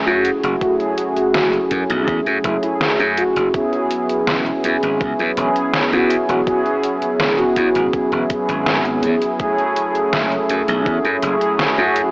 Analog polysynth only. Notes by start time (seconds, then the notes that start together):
Already playing: F#3 A3 C#4 E4 G#4
0.60 F#3 A3 C#4 E4 G#4
2.43 F#3 A3 C#4 E4 G#4
3.52 F#3 B3 C#4 E4 G#4
5.35 F#3 B3 C#4 E4 G#4
6.45 F#3 B3 C#4 E4 G#4
8.28 F#3 B3 C#4 E4 G#4
9.38 F#3 A3 C#4 E4 G#4
11.21 F#3 A3 C#4 E4 G#4